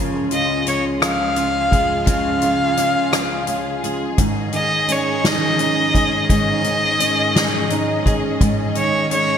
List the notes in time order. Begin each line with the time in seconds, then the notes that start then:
Already playing: C#2 C#3 F3 G#3 C#4 F4 G#4
0.31 F3 F4 D#5, closed hi-hat
0.66 G#3 C#4 C#5, closed hi-hat
1.00 F3 G#4, cross-stick, closed hi-hat
1.04 F5
1.36 C#4 F4, closed hi-hat
1.71 G#3 G#4, kick, closed hi-hat
2.06 C#3 F3 F5, kick, closed hi-hat
2.41 F3 F4, closed hi-hat
2.77 G#3 C#4, cross-stick, closed hi-hat
3.12 F3 G#4, cross-stick, closed hi-hat
3.47 C#4 F4, closed hi-hat
3.83 G#3 G#4, closed hi-hat
4.18 G#2 D#3 C#4 D#5, kick, closed hi-hat
4.52 D#3 D#4 D#5, closed hi-hat
4.88 G#3 C#4 C#5, closed hi-hat
5.24 D#3 G#4 D#5, snare, closed hi-hat
5.59 C#4 D#4, closed hi-hat
5.94 G#3 G#4, kick, closed hi-hat
6.29 G#2 D#3 D#5, kick, closed hi-hat
6.64 D#3 D#4, closed hi-hat
7.00 G#3 C#4, closed hi-hat
7.35 D#3 G#4, snare, closed hi-hat
7.70 C#4 D#4, closed hi-hat
8.05 G#3 G#4, kick, closed hi-hat
8.41 G#2 D#3, kick, closed hi-hat
8.75 D#3 D#4 C#5, closed hi-hat
9.11 G#3 C#4 C#5, closed hi-hat